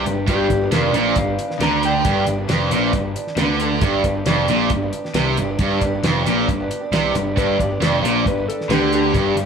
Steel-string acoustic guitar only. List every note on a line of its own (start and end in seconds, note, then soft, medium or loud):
0.05 0.17 G3 medium
0.05 0.16 B3 medium
0.05 0.15 D4 medium
0.05 0.14 G4 medium
0.15 0.27 G3 soft
0.15 0.27 B3 soft
0.15 0.27 D4 soft
0.15 0.27 G4 soft
0.27 0.50 G2 medium
0.27 0.50 D3 medium
0.27 0.48 G3 medium
0.27 0.49 B3 medium
0.27 0.49 D4 medium
0.27 0.50 G4 medium
0.49 0.61 G3 medium
0.49 0.61 B3 medium
0.49 0.60 D4 medium
0.49 0.60 G4 medium
0.61 0.71 G3 soft
0.61 0.71 B3 soft
0.61 0.72 D4 soft
0.61 0.72 G4 medium
0.72 0.94 G2 medium
0.72 0.95 D3 medium
0.72 0.92 G3 medium
0.72 0.93 B3 medium
0.72 0.94 D4 medium
0.72 0.94 G4 medium
0.93 1.26 G3 medium
0.93 1.26 B3 medium
0.93 1.25 D4 medium
0.93 1.24 G4 medium
1.25 1.48 G3 soft
1.25 1.48 B3 soft
1.25 1.46 D4 soft
1.25 1.46 G4 medium
1.47 1.59 G3 soft
1.47 1.59 B3 soft
1.47 1.60 D4 soft
1.47 1.60 G4 soft
1.60 1.71 G2 medium
1.60 1.72 D3 medium
1.60 1.72 G3 medium
1.60 1.71 B3 medium
1.60 1.71 D4 medium
1.60 1.70 G4 medium
1.71 1.82 G3 soft
1.71 1.82 B3 soft
1.71 1.83 D4 soft
1.71 1.83 G4 soft
1.83 1.94 G3 medium
1.83 1.94 B3 medium
1.83 1.94 D4 medium
1.83 1.93 G4 medium
1.94 2.03 G3 soft
1.94 2.04 B3 soft
1.94 2.04 D4 soft
1.94 2.04 G4 medium
2.04 2.27 G2 medium
2.04 2.27 D3 medium
2.04 2.24 G3 medium
2.04 2.25 B3 medium
2.04 2.26 D4 medium
2.04 2.26 G4 medium
2.25 2.37 G3 medium
2.25 2.38 B3 medium
2.25 2.37 D4 medium
2.25 2.36 G4 medium
2.38 2.47 G3 soft
2.38 2.47 B3 soft
2.38 2.47 D4 soft
2.38 2.48 G4 soft
2.47 2.70 G2 medium
2.47 2.71 D3 medium
2.47 2.67 G3 medium
2.47 2.68 B3 medium
2.47 2.68 D4 medium
2.47 2.69 G4 medium
2.68 3.03 G3 medium
2.68 3.02 B3 medium
2.68 3.01 D4 medium
2.68 3.01 G4 medium
3.02 3.38 G3 soft
3.02 3.37 B3 soft
3.02 3.37 D4 soft
3.02 3.36 G4 medium
3.37 3.60 G2 medium
3.37 3.60 D3 medium
3.37 3.59 G3 medium
3.37 3.60 B3 medium
3.37 3.60 D4 medium
3.37 3.61 G4 medium
3.60 3.71 G3 medium
3.60 3.71 B3 medium
3.60 3.69 D4 medium
3.60 3.69 G4 medium
3.70 3.80 G3 soft
3.70 3.80 B3 soft
3.70 3.81 D4 soft
3.70 3.81 G4 soft
3.81 4.04 G2 medium
3.81 4.04 D3 medium
3.81 4.02 G3 medium
3.81 4.02 B3 medium
3.81 4.03 D4 medium
3.81 4.04 G4 medium
4.03 4.15 G3 soft
4.03 4.14 B3 medium
4.03 4.14 D4 medium
4.03 4.12 G4 medium
4.13 4.25 G3 soft
4.13 4.25 B3 soft
4.13 4.25 D4 soft
4.13 4.25 G4 medium
4.25 4.48 G2 medium
4.25 4.48 D3 medium
4.25 4.46 G3 medium
4.25 4.47 B3 medium
4.25 4.47 D4 medium
4.25 4.48 G4 medium
4.47 4.81 G3 medium
4.47 4.81 B3 medium
4.47 4.81 D4 medium
4.47 4.80 G4 medium
4.81 5.04 G3 soft
4.81 5.05 B3 soft
4.81 5.03 D4 soft
4.81 5.03 G4 medium
5.04 5.15 G3 soft
5.04 5.15 B3 soft
5.04 5.15 D4 soft
5.04 5.15 G4 soft
5.15 5.26 G2 medium
5.15 5.26 D3 medium
5.15 5.26 G3 medium
5.15 5.26 B3 medium
5.15 5.27 D4 medium
5.15 5.26 G4 medium
5.27 5.37 G3 soft
5.27 5.39 B3 soft
5.27 5.38 D4 soft
5.27 5.38 G4 soft
5.38 5.49 G3 medium
5.38 5.49 B3 medium
5.38 5.48 D4 medium
5.38 5.47 G4 medium
5.48 5.60 G3 soft
5.48 5.60 B3 soft
5.48 5.60 D4 soft
5.48 5.59 G4 medium
5.61 5.82 G2 medium
5.61 5.82 D3 medium
5.61 5.82 G3 medium
5.61 5.83 B3 medium
5.61 5.83 D4 medium
5.61 5.83 G4 medium
5.83 5.93 G3 medium
5.83 5.94 B3 medium
5.83 5.94 D4 medium
5.83 5.93 G4 medium
5.94 6.05 G3 soft
5.94 6.05 B3 soft
5.94 6.05 D4 soft
5.94 6.04 G4 medium
6.05 6.26 G2 medium
6.05 6.27 D3 medium
6.05 6.23 G3 medium
6.05 6.24 B3 medium
6.05 6.25 D4 medium
6.05 6.25 G4 medium
6.24 6.58 G3 medium
6.24 6.59 B3 medium
6.24 6.58 D4 medium
6.24 6.58 G4 medium
6.59 6.81 G3 soft
6.59 6.81 B3 soft
6.59 6.80 D4 soft
6.59 6.79 G4 soft
6.80 6.90 G3 soft
6.80 6.91 B3 soft
6.80 6.91 D4 soft
6.80 6.92 G4 medium
6.91 7.14 G2 medium
6.91 7.14 D3 medium
6.91 7.11 G3 medium
6.91 7.12 B3 medium
6.91 7.12 D4 medium
6.91 7.13 G4 medium
7.12 7.24 G3 medium
7.12 7.23 B3 medium
7.12 7.23 D4 medium
7.12 7.22 G4 medium
7.24 7.36 G3 soft
7.24 7.36 B3 soft
7.24 7.36 D4 soft
7.24 7.36 G4 soft
7.36 7.58 G2 medium
7.36 7.59 D3 medium
7.36 7.57 G3 medium
7.36 7.57 B3 medium
7.36 7.58 D4 medium
7.36 7.59 G4 medium
7.58 7.70 G3 medium
7.58 7.70 B3 medium
7.58 7.69 D4 medium
7.58 7.69 G4 medium
7.70 7.79 G3 soft
7.70 7.79 B3 soft
7.70 7.79 D4 soft
7.70 7.80 G4 medium
7.80 8.03 G2 medium
7.80 8.03 D3 medium
7.80 8.01 G3 medium
7.80 8.03 B3 medium
7.80 8.03 D4 medium
7.80 8.03 G4 medium
8.03 8.36 G3 medium
8.03 8.37 B3 medium
8.03 8.36 D4 medium
8.03 8.36 G4 medium
8.37 8.69 G3 soft
8.37 8.69 B3 soft
8.37 8.69 D4 medium
8.37 8.70 G4 medium
8.70 8.81 G2 medium
8.70 8.81 D3 medium
8.70 8.81 G3 medium
8.70 8.81 B3 medium
8.70 8.81 D4 medium
8.70 8.80 G4 medium
8.81 8.90 G3 soft
8.81 8.91 B3 soft
8.81 8.91 D4 soft
8.81 8.92 G4 soft
8.91 9.03 G3 medium
8.91 9.02 B3 medium
8.91 9.02 D4 medium
8.91 9.01 G4 medium
9.02 9.14 G3 soft
9.02 9.13 B3 soft
9.02 9.14 D4 soft
9.02 9.14 G4 soft
9.14 9.36 G2 medium
9.14 9.36 D3 medium
9.14 9.36 G3 medium
9.14 9.36 B3 medium
9.14 9.37 D4 medium
9.14 9.37 G4 medium
9.37 9.46 G3 medium
9.37 9.46 B3 medium
9.37 9.46 D4 medium
9.37 9.46 G4 medium